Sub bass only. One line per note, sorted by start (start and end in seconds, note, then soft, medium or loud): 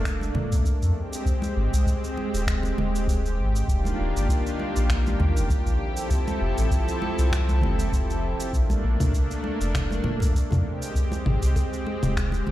0.00 0.31 F1 medium
0.35 0.53 A#2 medium
0.51 0.62 A#1 medium
0.82 0.93 F2 medium
1.57 1.69 G#1 loud
1.73 1.84 C2 medium
2.34 2.73 D#1 medium
2.78 3.40 D#1 medium
3.38 3.63 G#1 medium
3.68 3.93 D#1 loud
4.00 4.12 D#1 loud
4.16 4.27 G1 medium
4.76 5.16 A#1 medium
5.20 5.38 D#2 medium
5.36 5.47 D#1 medium
5.66 5.77 A#1 medium
6.41 6.54 F1 loud
6.57 6.68 A1 medium
7.18 7.64 C2 loud
7.63 8.34 F1 medium
8.53 8.78 A#1 medium
8.84 8.97 A#1 loud
9.00 9.11 D2 medium
9.60 10.00 F1 medium
10.04 10.22 A#2 medium
10.21 10.32 A#1 medium
10.51 10.62 F2 medium
11.26 11.39 G#1 loud
11.43 11.53 C2 medium
12.03 12.42 D#1 medium
12.47 12.51 D#1 medium